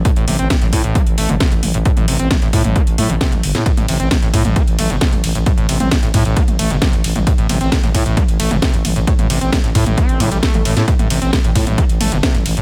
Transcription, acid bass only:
X:1
M:4/4
L:1/16
Q:1/4=133
K:Am
V:1 name="Acid bass" clef=bass
A,, A,, C, C C, A,, A,, A,, C z A, A,, C, A,,, z A,, | A,, A,, C, C C, A,, A,, A,, C z A, A,, C, A,,, z A,, | A,, A,, C, C C, A,, A,, A,, C z A, A,, C, A,,, z A,, | A,, A,, C, C C, A,, A,, A,, C z A, A,, C, A,,, z A,, |
A,, A,, C, C C, A,, A,, A,, C z A, A,, C, A,,, z A,, | A,, A,, C, C C, A,, A,, A,, C2 C, G, A, C, A,, A,, | A,, A,, C, C C, A,, A,, A,, C z A, A,, C, A,,, z A,, |]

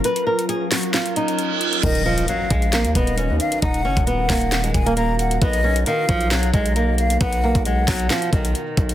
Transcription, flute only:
X:1
M:4/4
L:1/8
Q:1/4=134
K:Ebm
V:1 name="Flute"
z8 | e2 f3 e2 f | g2 g3 a b g | ^d2 f3 d2 f |
^f2 f3 ^d z2 |]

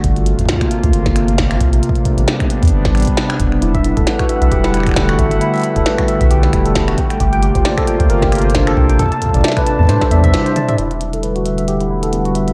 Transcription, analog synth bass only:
X:1
M:4/4
L:1/16
Q:"Swing 16ths" 1/4=134
K:Em
V:1 name="Analog synth bass" clef=bass
G,,,3 G,,, z3 D,, G,,,6 C,, _B,,, | z3 A,,, z3 E,, G,,,2 A,,, z3 E,,,2 | E,,,3 E,,, z3 B,,, E,,,6 A,,, G,,, | z3 E,,, z3 B,,, B,,,2 E,,,4 z2 |
G,,,3 G,,, z3 D,, G,,,6 C,, _B,,, | z3 A,,, z3 E,, A,, z E,,2 z4 | E,,,16 |]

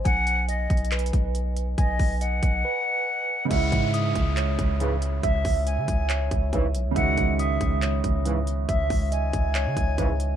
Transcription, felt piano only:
X:1
M:4/4
L:1/8
Q:1/4=139
K:C#m
V:1 name="Felt piano" clef=bass
z8 | z8 | [C,G,CE]8- | [C,G,CE]8 |
[C,D,G,F]8- | [C,D,G,F]8 |]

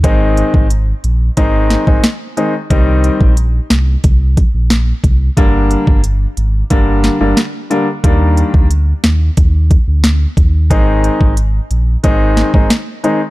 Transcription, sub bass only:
X:1
M:4/4
L:1/16
Q:1/4=90
K:Ablyd
V:1 name="Sub bass" clef=bass
A,,,3 A,,,3 B,,,2 A,,,3 A,,, z4 | C,,3 B,,,3 C,,2 C,,3 B,,,3 C,,2 | G,,,3 G,,,3 A,,,2 G,,,3 G,,, z4 | E,,3 D,,3 E,,2 E,,3 D,,3 E,,2 |
A,,,3 A,,,3 B,,,2 A,,,3 A,,, z4 |]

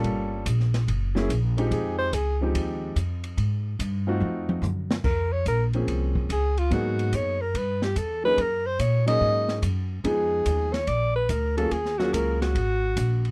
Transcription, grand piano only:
X:1
M:4/4
L:1/8
Q:"Swing" 1/4=144
K:Fm
V:1 name="Grand piano"
[G,^A,D^E=A]2 z3 [_G,B,D_F_A] z [=F,_A,C_E=G]- | [F,A,CEG]2 z [F,A,CEG]3 z2 | z3 [=A,CEF_G]3 z2 | [K:Bbm] z3 [F,B,CDA]3 z2 |
[G,B,_CEA]3 z4 [^F,B,^CEA] | z3 [G,B,DEA]3 z2 | [F,A,_CEA]3 z4 [G,B,DFA] | z [G,B,DFA]3 z4 |]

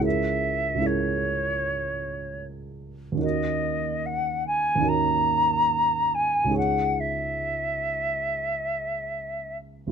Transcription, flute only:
X:1
M:4/4
L:1/8
Q:1/4=73
K:C#dor
V:1 name="Flute"
e2 c4 z2 | d2 f g a3 g | f e6 z |]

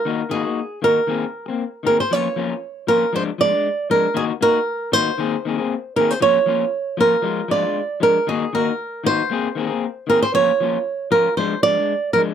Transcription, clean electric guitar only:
X:1
M:4/4
L:1/16
Q:1/4=117
K:Bbm
V:1 name="Clean electric guitar"
[E,B,EG] z [E,B,EG] [B,EG] z2 [E,B,EG] z [E,B,CA] z2 [B,C] z2 [E,B,CA] z | [F,B,DF] z [F,B,DF] z3 [F,B,DF] z [F,A,=D] z [F,A,D] [A,D] z2 [F,A,D] z | [E,B,EG] z [B,EG] z3 [E,B,EG] z [E,B,CA] z [E,B,CA] [B,CA] z2 [E,B,CA] z | [F,B,DF] z [F,B,DF] z3 [F,B,DF] z [F,A,F] z [F,A,=DF] [A,DF] z2 [F,A,D] z |
[E,B,EG] z [E,B,EG] z3 [E,B,EG] z [B,CA] z [E,B,CA] [B,CA] z2 [E,B,CA] z | [F,B,DF] z [F,B,DF] z3 [F,DF] z [F,A,=D] z [F,A,D] [A,D] z2 [F,A,D] z |]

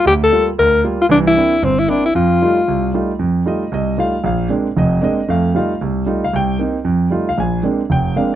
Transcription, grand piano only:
X:1
M:4/4
L:1/8
Q:"Swing" 1/4=229
K:Fmix
V:1 name="Grand piano"
z8 | z8 | z8 | z2 e2 e2 f2 |
f2 z2 e2 e2 | f2 f2 z3 f | g2 z4 z f | _a2 z2 g2 f z |]
V:2 name="Grand piano"
D,,2 [G,B,F] z D,,2 [G,B,F] z | [C,,=E,]2 [B,CD=E] z G,,,2 [B,CDE] z | F,,2 [G,A,EF] z C,,2 [G,A,EF] z | F,,2 [G,A,EF] z C,,2 [G,A,EF] z |
B,,,2 [_A,B,CD] z [F,,,F,,]2 [A,B,CD] z | [F,,A,]2 [G,A,EF] z C,,2 [G,A,EF] z | C,,2 [B,CE] z F,,2 [G,A,EF] z | B,,,2 [_A,B,CD] z F,,,2 [A,B,CD] z |]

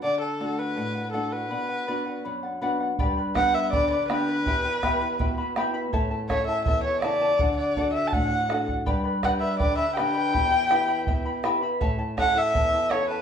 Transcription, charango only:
X:1
M:2/4
L:1/16
Q:1/4=82
K:Glyd
V:1 name="Charango"
[Adf] [df] [Adf] [df] [Adf] [df] [Adf] [df] | [Bdf] f [Bdf] [df] [Bdf] [df] [Bdf] [df] | [GBdgb] [Bdb] [GBdgb] [Bdb] [Bdgb] [Bdb] [GBdgb] [Bdb] | [EGegb] [Eeb] [EGegb] [Eeb] [Eegb] [Eeb] [EGegb] [Eeb] |
[EAcea] [EAa] [EAcea] [EAa] [EAea] [EAa] [EAcea] [EAa] | [Adf] [df] [Adf] [df] [Adf] [df] [Adf] [df] | [GBdgb] [Bdb] [GBdgb] [Bdb] [Bdgb] [Bdb] [GBdgb] [Bdb] | [EGegb] [Eeb] [EGegb] [Eeb] [Eegb] [Eeb] [EGegb] [Eeb] |
[EAcea] [EAa] [EAcea] [EAa] [EAea] [EAa] [EAcea] [EAa] |]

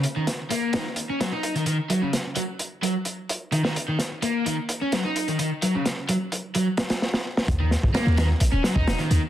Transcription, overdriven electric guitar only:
X:1
M:4/4
L:1/16
Q:1/4=129
K:Ebm
V:1 name="Overdriven electric guitar" clef=bass
z E, z2 B,2 E, z2 D G, E2 E, E, z | G, D, z2 G, z3 G, z4 z E, E, | z E, z2 B,2 E, z2 D G, E2 E, E, z | G, D, z2 G, z3 G, z6 z |
z E, z2 B,2 E, z2 D G, E2 E, E, z |]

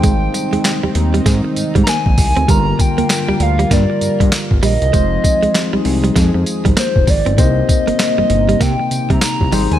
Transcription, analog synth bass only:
X:1
M:4/4
L:1/16
Q:"Swing 16ths" 1/4=98
K:Cm
V:1 name="Analog synth bass" clef=bass
A,,,2 z E,, z E,, E,,2 A,, z A,, A,, z B,,, C,, D,, | G,,,2 z D,, z D,, D,,2 G,, z G,, G,, z G,,, B,,, C,, | F,,,2 z C,, z C,, C,,2 F,, F,, z A,,, z F,,, A,,, G,,, | C,,2 z G,,, z G,,, G,,,2 C, z C, C, z C,, A,,, E,, |]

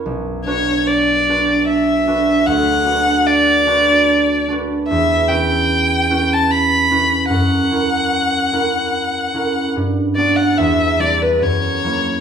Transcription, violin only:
X:1
M:3/4
L:1/16
Q:1/4=74
K:Bm
V:1 name="Violin"
z2 c2 d4 e4 | f4 d6 z2 | e2 g4- g a b4 | f12 |
z2 d f e2 d B c4 |]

